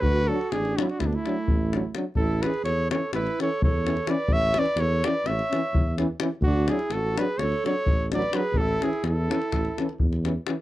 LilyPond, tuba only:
\new Staff \with { instrumentName = "Tuba" } { \clef bass \time 9/8 \key a \major \tempo 4. = 85 d,4 a,,4 d,8 r8 a,,4. | a,,4 e,4 a,,8 r8 e,4. | a,,4 e,4 a,,8 r8 e,4. | d,4 a,,4 d,8 r8 a,,4. |
a,,4 e,4 a,,8 r8 e,4. | }